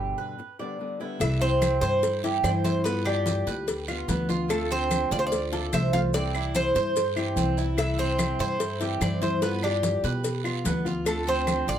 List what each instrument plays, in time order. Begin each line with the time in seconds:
Already playing: upright bass G1, nylon-string guitar B2 D3 G3 B3 G4, cuban tres G4 B4
0.18 cuban tres B4
0.38 muted nylon-string guitar stroke
0.59 nylon-string guitar D3 G3 B3 G4, cuban tres D5
0.79 nylon-string guitar D3 G3 B3 G4
1.00 nylon-string guitar D3 G3 B3 G4, cuban tres E4
1.19 upright bass C2, nylon-string guitar C3 E3 G3 C4 E4, cuban tres E5, cowbell, high conga, long guiro, claves, maracas
1.41 cuban tres C4 C5, high conga, maracas
1.62 cowbell, high conga, short guiro, claves, maracas
1.81 upright bass G2, cuban tres E4 C5, cowbell, high conga, short guiro, maracas
2.02 muted nylon-string guitar stroke, cowbell, high conga, long guiro, maracas
2.23 nylon-string guitar E3 G3 C4 E4, cuban tres G4, cowbell, high conga, maracas
2.43 upright bass G2, nylon-string guitar E3 G3 C4 E4, cuban tres C5 D5, cowbell, high conga, short guiro, claves, maracas
2.64 nylon-string guitar E3 G3 C4 E4, cuban tres C5, cowbell, high conga, short guiro, maracas
2.84 nylon-string guitar G3 B3, cuban tres B3 B4, cowbell, high conga, long guiro, maracas
2.88 nylon-string guitar F4
3.05 cuban tres D4 G4, high conga, claves, maracas
3.26 cowbell, high conga, short guiro, maracas
3.46 upright bass D2, cuban tres B4, cowbell, high conga, short guiro, maracas
3.67 muted nylon-string guitar stroke, cowbell, high conga, long guiro, maracas
3.88 nylon-string guitar B3 F4, cuban tres F4, high conga, claves, maracas
4.08 upright bass D2, nylon-string guitar G3 B3 F4, cuban tres B3, cowbell, high conga, short guiro, maracas
4.29 nylon-string guitar B3 F4, cuban tres F4, high conga, short guiro, maracas
4.48 nylon-string guitar D3 A3 C4 F4, cuban tres A4, cowbell, high conga, long guiro, claves, maracas
4.71 cuban tres C4 C5, high conga, maracas
4.91 cowbell, high conga, short guiro, claves, maracas
5.11 upright bass D2, cuban tres F4 D5, cowbell, high conga, short guiro, maracas
5.19 cuban tres C5
5.26 cuban tres D5
5.32 muted nylon-string guitar stroke, cowbell, high conga, long guiro, maracas
5.52 nylon-string guitar A3 C4 F4, cuban tres A4, cowbell, high conga, maracas
5.72 upright bass C2, nylon-string guitar D3 A3 C4 F4, cuban tres C5 E5, cowbell, high conga, short guiro, claves, maracas
5.93 nylon-string guitar A3 C4 F4, cuban tres F5, cowbell, high conga, short guiro, maracas
6.14 nylon-string guitar C3 E3 G3 C4 E4, cuban tres C4 D5, cowbell, long guiro, maracas
6.34 cuban tres E4, high conga, claves, maracas
6.55 cuban tres C5, cowbell, high conga, short guiro, maracas
6.75 upright bass G2, cuban tres C5, cowbell, high conga, short guiro, maracas
6.96 muted nylon-string guitar stroke, cowbell, high conga, long guiro, maracas
7.16 nylon-string guitar E3 G3 C4 E4, cuban tres G4, high conga, claves, maracas
7.36 upright bass C2, nylon-string guitar E3 G3 C4 E4, cuban tres C4, cowbell, high conga, short guiro, maracas
7.57 nylon-string guitar E3 G3 C4 E4, cuban tres E4, short guiro, maracas
7.77 nylon-string guitar C3 E3 G3 C4 E4, cuban tres E5, cowbell, high conga, long guiro, claves, maracas
7.98 cuban tres C4 C5, high conga, maracas
8.18 cowbell, high conga, short guiro, claves, maracas
8.39 upright bass G2, cuban tres E4 C5, cowbell, high conga, short guiro, maracas
8.59 muted nylon-string guitar stroke, cowbell, high conga, long guiro, maracas
8.80 nylon-string guitar E3 G3 C4 E4, cuban tres G4, cowbell, high conga, maracas
9.00 upright bass G2, nylon-string guitar E3 G3 C4 E4, cuban tres C5 D5, cowbell, high conga, short guiro, claves, maracas
9.21 nylon-string guitar E3 G3 C4 E4, cuban tres C5, cowbell, high conga, short guiro, maracas
9.40 nylon-string guitar G3 B3 F4, cuban tres B3 B4, cowbell, high conga, long guiro, maracas
9.63 cuban tres D4 G4, high conga, claves, maracas
9.83 cowbell, high conga, short guiro, maracas
10.03 upright bass B2, cuban tres B4, cowbell, high conga, short guiro, maracas
10.23 muted nylon-string guitar stroke, cowbell, high conga, long guiro, maracas
10.44 nylon-string guitar B3 F4, cuban tres F4, high conga, claves, maracas
10.64 upright bass D2, nylon-string guitar G3 B3 F4, cuban tres B3, cowbell, high conga, short guiro, maracas
10.85 nylon-string guitar B3 F4, cuban tres F4, high conga, short guiro, maracas
11.05 nylon-string guitar D3 A3 C4 F4, cuban tres A4, cowbell, high conga, long guiro, claves, maracas
11.27 cuban tres C4 C5, high conga, maracas
11.47 cowbell, high conga, short guiro, claves, maracas
11.67 upright bass A1, cuban tres F4 D5, cowbell, high conga, short guiro, maracas